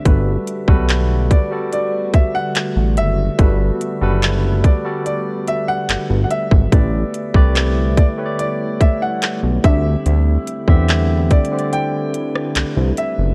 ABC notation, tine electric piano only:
X:1
M:4/4
L:1/16
Q:1/4=72
K:G
V:1 name="Tine electric piano"
[G,FAB]2 z [G,FAB]3 z [G,FAd]6 z3 | [G,FAB]2 z [G,FAB]3 z [G,FAd]6 z3 | [A,GBd]2 z [A,GBd]3 z [A,GB^cd]6 z [D,=CGe]2- | [D,CGe]2 z [D,CGe]3 z [D,CGcd]6 z3 |]